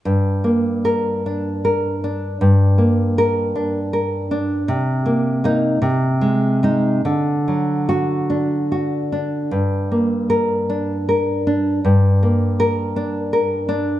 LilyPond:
\new Staff \with { instrumentName = "Nylon-string guitar" } { \time 6/8 \key g \minor \tempo 4. = 52 << { r4 bes'4 r4 | r4 bes'4 r4 | r4 ees'8 r4 ees'8 | r4 fis'4 r4 |
r4 bes'4 r4 | r4 bes'4 r4 | } \\ { g,8 bes4 d'8 bes'8 d'8 | g,8 bes4 d'8 bes'8 d'8 | c8 bes8 bes8 c8 aes8 aes8 | d8 fis4 d'8 fis'8 d'8 |
g,8 bes4 d'8 bes'8 d'8 | g,8 bes4 d'8 bes'8 d'8 | } >> }